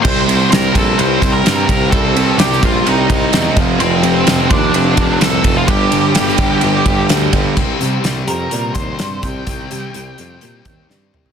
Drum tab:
CC |x---------------|----------------|----------------|----------------|
RD |--x-x-x-x-x-x-x-|x-x-x-x-x-x-x-x-|x-x-x-x-x-x-x-x-|x-x-x-x-x-x-x-x-|
HH |----------------|----------------|----------------|----------------|
SD |----o-------o---|----oo------o---|----o-------o---|----oo------o---|
T2 |----------------|----------------|----------------|----------------|
FT |----------------|----------------|----------------|----------------|
BD |o-----o---o---o-|o-----o---o---o-|------o---o---o-|o-----o---o---o-|

CC |x---------------|----------------|
RD |----------------|----------------|
HH |--x-x-x-x-x-x-x-|x-x-x-x-x-x-----|
SD |--o-o-------o---|------------o---|
T2 |----------------|--------------o-|
FT |----------------|---------------o|
BD |o---------o---o-|o---------o-----|